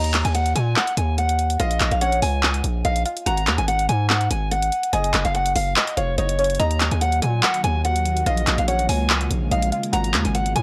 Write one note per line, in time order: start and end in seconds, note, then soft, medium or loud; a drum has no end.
0.00 0.24 D#2 loud
0.00 1.56 D#5 loud
0.00 0.23 A#5 loud
0.04 closed hi-hat medium
0.14 clap medium
0.14 closed hi-hat medium
0.25 0.54 D#2 loud
0.25 0.33 G#5 medium
0.25 closed hi-hat medium
0.35 0.52 F#5 medium
0.35 closed hi-hat medium
0.46 closed hi-hat medium
0.55 0.75 A#2 loud
0.55 0.73 G#5 loud
0.55 closed hi-hat medium
0.76 0.93 F#5 medium
0.76 clap loud
0.87 closed hi-hat medium
0.97 1.57 D#2 loud
0.97 1.14 G#5 medium
0.97 closed hi-hat medium
1.18 1.57 F#5 medium
1.18 closed hi-hat medium
1.29 closed hi-hat medium
1.39 closed hi-hat medium
1.50 closed hi-hat medium
1.60 1.80 A#1 loud
1.60 1.90 D#5 loud
1.60 1.99 F5 loud
1.60 closed hi-hat medium
1.71 closed hi-hat medium
1.80 1.91 A#1 loud
1.80 clap medium
1.80 closed hi-hat medium
1.91 2.21 A#1 loud
1.91 2.00 F5 medium
1.91 closed hi-hat medium
2.01 2.81 C#5 medium
2.01 2.19 F#5 medium
2.01 closed hi-hat medium
2.12 closed hi-hat medium
2.22 2.62 C#2 loud
2.22 2.81 G#5 medium
2.22 open hi-hat medium
2.43 clap loud
2.54 closed hi-hat medium
2.64 2.84 A#1 loud
2.64 closed hi-hat medium
2.85 3.05 A#1 loud
2.85 3.05 D#5 medium
2.85 3.02 F5 medium
2.85 closed hi-hat medium
2.96 closed hi-hat medium
3.06 3.25 F5 medium
3.06 closed hi-hat medium
3.17 closed hi-hat medium
3.26 3.49 G#1 loud
3.26 4.89 F#5 loud
3.26 3.56 A#5 loud
3.26 closed hi-hat medium
3.37 closed hi-hat medium
3.47 3.58 D#2 loud
3.47 clap medium
3.47 closed hi-hat medium
3.58 3.88 G#1 loud
3.58 3.66 G#5 medium
3.58 closed hi-hat medium
3.68 3.85 F#5 medium
3.68 closed hi-hat medium
3.79 closed hi-hat medium
3.89 4.29 G#2 loud
3.89 4.06 G#5 medium
3.89 closed hi-hat medium
4.10 4.27 F#5 medium
4.10 clap loud
4.21 closed hi-hat medium
4.31 4.71 G#1 loud
4.31 4.48 G#5 medium
4.31 closed hi-hat medium
4.51 4.90 F#5 loud
4.51 closed hi-hat medium
4.62 closed hi-hat medium
4.72 closed hi-hat medium
4.83 closed hi-hat medium
4.93 5.13 F#1 loud
4.93 5.23 D#5 loud
4.93 5.32 G#5 loud
4.93 closed hi-hat medium
5.04 closed hi-hat medium
5.14 5.24 F#1 loud
5.14 clap medium
5.14 closed hi-hat medium
5.25 5.54 F#1 loud
5.25 5.33 F5 medium
5.25 closed hi-hat medium
5.34 5.93 F#5 medium
5.34 5.52 F#5 medium
5.34 closed hi-hat medium
5.46 closed hi-hat medium
5.55 5.75 F#1 loud
5.55 5.73 F5 medium
5.55 open hi-hat medium
5.76 5.93 D#5 medium
5.76 clap loud
5.87 closed hi-hat medium
5.97 6.17 F1 loud
5.97 6.14 C#5 medium
5.97 6.17 F5 medium
5.97 closed hi-hat medium
6.18 6.58 F#1 loud
6.18 6.57 C#5 medium
6.18 6.38 D#5 medium
6.18 closed hi-hat medium
6.29 closed hi-hat medium
6.39 6.59 C#5 medium
6.39 closed hi-hat medium
6.44 closed hi-hat medium
6.50 closed hi-hat medium
6.55 closed hi-hat medium
6.60 6.90 D#2 loud
6.60 8.25 D#3 medium
6.60 8.25 F#3 medium
6.60 9.90 A#3 medium
6.60 8.25 F#4 medium
6.60 8.22 D#5 loud
6.60 6.90 A#5 loud
6.60 closed hi-hat medium
6.71 closed hi-hat medium
6.80 clap medium
6.80 closed hi-hat medium
6.91 7.21 D#2 loud
6.91 7.00 G#5 medium
6.91 closed hi-hat medium
7.01 7.18 F#5 medium
7.01 closed hi-hat medium
7.12 closed hi-hat medium
7.22 7.42 A#2 loud
7.22 7.39 G#5 medium
7.22 closed hi-hat medium
7.43 7.60 F#5 medium
7.43 clap loud
7.54 closed hi-hat medium
7.64 8.24 D#2 loud
7.64 7.81 G#5 medium
7.64 closed hi-hat medium
7.85 8.24 F#5 medium
7.85 closed hi-hat medium
7.96 closed hi-hat medium
8.05 closed hi-hat medium
8.17 closed hi-hat medium
8.26 8.46 A#1 loud
8.26 9.91 C#3 medium
8.26 10.62 G#3 medium
8.26 9.91 F4 medium
8.26 8.56 D#5 loud
8.26 8.66 F5 loud
8.26 closed hi-hat medium
8.37 closed hi-hat medium
8.47 8.58 A#1 loud
8.47 clap loud
8.47 closed hi-hat medium
8.58 8.88 A#1 loud
8.58 8.66 F5 medium
8.58 closed hi-hat medium
8.68 9.47 C#5 medium
8.68 8.85 F#5 medium
8.68 closed hi-hat medium
8.79 closed hi-hat medium
8.89 9.29 C#2 loud
8.89 9.48 G#5 medium
8.89 open hi-hat medium
9.10 clap loud
9.21 closed hi-hat medium
9.30 9.50 A#1 loud
9.30 closed hi-hat medium
9.51 9.71 A#1 loud
9.51 9.71 D#5 medium
9.51 9.68 F5 medium
9.51 closed hi-hat medium
9.62 closed hi-hat medium
9.72 9.92 F5 medium
9.72 closed hi-hat medium
9.83 closed hi-hat medium
9.93 10.15 G#1 loud
9.93 10.62 D#3 medium
9.93 10.62 B3 medium
9.93 10.62 F#4 medium
9.93 10.62 F#5 loud
9.93 10.23 A#5 loud
9.93 closed hi-hat medium
10.04 closed hi-hat medium
10.14 10.24 D#2 loud
10.14 clap medium
10.14 closed hi-hat medium
10.25 10.54 G#1 loud
10.25 10.33 G#5 medium
10.25 closed hi-hat medium
10.35 10.52 F#5 medium
10.35 closed hi-hat medium
10.46 closed hi-hat medium
10.55 10.62 G#2 loud
10.55 10.62 G#5 medium
10.55 closed hi-hat medium